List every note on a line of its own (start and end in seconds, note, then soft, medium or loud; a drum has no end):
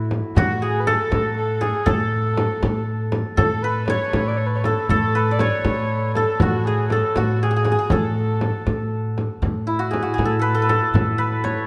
0.00 0.18 A2 medium
0.00 0.12 E4 medium
0.00 2.34 E4 medium
0.00 0.37 F#4 medium
0.00 0.68 A4 medium
0.11 frame drum medium
0.36 0.94 A2 medium
0.36 0.64 F#4 medium
0.36 3.63 F#4 loud
0.36 frame drum loud
0.62 0.93 G#4 medium
0.62 0.82 G#4 medium
0.80 0.88 B4 medium
0.87 1.37 A4 loud
0.87 1.67 A4 medium
0.87 frame drum medium
1.12 1.69 A2 medium
1.12 frame drum medium
1.37 1.63 A4 medium
1.61 1.92 G#4 medium
1.61 1.91 G#4 medium
1.61 frame drum medium
1.86 2.45 A2 medium
1.86 3.37 A4 medium
1.86 frame drum medium
1.90 3.14 A4 medium
2.37 frame drum medium
2.63 3.20 A2 medium
2.63 frame drum medium
3.12 frame drum medium
3.37 3.96 A2 medium
3.37 4.65 A4 medium
3.37 3.64 A4 medium
3.37 frame drum medium
3.62 3.88 B4 medium
3.62 5.15 B4 medium
3.88 4.30 C#5 medium
3.88 5.37 C#5 medium
3.88 frame drum medium
4.13 4.71 A2 medium
4.13 frame drum medium
4.28 4.39 D5 medium
4.37 4.48 C#5 medium
4.47 4.57 B4 medium
4.55 4.66 B4 medium
4.55 4.60 C#5 medium
4.64 4.90 A4 medium
4.64 frame drum medium
4.89 5.47 A2 medium
4.89 6.16 A4 loud
4.89 5.42 A4 medium
4.89 frame drum medium
5.15 7.88 B4 medium
5.31 5.46 D5 medium
5.39 7.96 C#5 medium
5.39 6.16 C#5 loud
5.39 frame drum medium
5.64 6.22 A2 medium
5.64 frame drum medium
6.15 6.73 A4 medium
6.15 6.43 A4 medium
6.15 frame drum medium
6.40 6.99 A2 medium
6.40 6.67 F#4 medium
6.40 7.17 F#4 medium
6.40 frame drum loud
6.65 6.89 G#4 medium
6.65 6.98 G#4 medium
6.89 7.17 A4 medium
6.89 7.49 A4 medium
6.89 frame drum medium
7.16 7.74 A2 medium
7.16 7.41 F#4 medium
7.16 9.79 F#4 medium
7.16 frame drum medium
7.40 7.93 G#4 medium
7.40 7.50 G#4 medium
7.51 7.56 G#4 medium
7.56 7.64 G#4 medium
7.64 7.71 G#4 medium
7.64 frame drum medium
7.72 7.78 G#4 medium
7.79 7.98 G#4 medium
7.90 8.49 A2 medium
7.90 8.92 A4 medium
7.90 9.97 A4 medium
7.90 frame drum medium
8.41 frame drum medium
8.67 9.25 A2 medium
8.67 frame drum medium
9.18 frame drum medium
9.42 10.00 A2 medium
9.42 11.67 A2 medium
9.42 frame drum medium
9.67 11.67 E4 medium
9.79 10.02 F#4 medium
9.91 10.13 G#4 medium
9.91 frame drum medium
10.03 11.67 F#4 medium
10.14 10.31 G#4 medium
10.18 10.76 A2 medium
10.18 frame drum medium
10.25 10.39 A4 medium
10.39 10.54 A4 medium
10.39 10.62 B4 medium
10.55 10.69 A4 medium
10.62 11.18 B4 medium
10.69 11.67 A4 medium
10.69 frame drum medium
10.94 11.52 A2 medium
10.94 frame drum medium
11.18 11.67 B4 medium
11.44 11.67 C#5 medium
11.44 frame drum medium